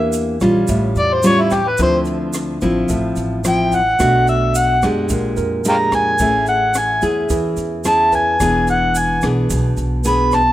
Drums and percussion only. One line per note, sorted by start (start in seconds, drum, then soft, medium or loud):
0.13 closed hi-hat soft
0.13 shaker medium
0.41 kick soft
0.41 cross-stick soft
0.41 closed hi-hat soft
0.41 shaker soft
0.68 kick soft
0.68 closed hi-hat soft
0.68 shaker medium
0.96 closed hi-hat soft
0.96 shaker soft
1.23 closed hi-hat soft
1.23 shaker medium
1.51 kick soft
1.51 cross-stick medium
1.51 closed hi-hat soft
1.51 shaker soft
1.78 kick medium
1.78 closed hi-hat soft
1.78 shaker medium
2.05 closed hi-hat soft
2.05 shaker soft
2.33 cross-stick medium
2.33 closed hi-hat soft
2.33 shaker medium
2.61 kick soft
2.61 closed hi-hat soft
2.61 shaker soft
2.89 kick soft
2.89 closed hi-hat soft
2.89 shaker medium
3.16 closed hi-hat soft
3.16 shaker soft
3.44 cross-stick medium
3.44 closed hi-hat soft
3.44 shaker medium
3.72 kick soft
3.72 closed hi-hat soft
3.72 shaker soft
3.99 kick medium
3.99 cross-stick soft
3.99 closed hi-hat soft
3.99 shaker medium
4.27 closed hi-hat soft
4.27 shaker soft
4.55 closed hi-hat soft
4.55 shaker medium
4.82 kick soft
4.82 cross-stick medium
4.82 closed hi-hat soft
4.82 shaker soft
5.09 kick medium
5.09 closed hi-hat soft
5.09 shaker medium
5.37 closed hi-hat soft
5.37 shaker soft
5.65 closed hi-hat soft
5.65 shaker medium
5.92 kick soft
5.92 cross-stick medium
5.92 closed hi-hat soft
5.92 shaker soft
6.18 kick medium
6.18 closed hi-hat soft
6.18 shaker medium
6.46 closed hi-hat soft
6.46 shaker soft
6.74 cross-stick medium
6.74 closed hi-hat soft
6.74 shaker medium
7.02 kick soft
7.02 closed hi-hat soft
7.02 shaker soft
7.29 kick medium
7.29 closed hi-hat soft
7.29 shaker medium
7.57 closed hi-hat soft
7.57 shaker soft
7.84 cross-stick medium
7.84 closed hi-hat soft
7.84 shaker medium
8.12 kick soft
8.12 closed hi-hat soft
8.12 shaker soft
8.40 kick medium
8.40 cross-stick medium
8.40 closed hi-hat soft
8.40 shaker medium
8.67 closed hi-hat soft
8.67 shaker soft
8.95 closed hi-hat soft
8.95 shaker medium
9.22 kick soft
9.22 cross-stick medium
9.22 closed hi-hat soft
9.22 shaker soft
9.50 kick soft
9.50 closed hi-hat soft
9.50 shaker medium
9.77 closed hi-hat soft
9.77 shaker soft
10.04 closed hi-hat soft
10.04 shaker medium
10.32 kick soft
10.32 cross-stick medium
10.32 closed hi-hat soft
10.32 shaker soft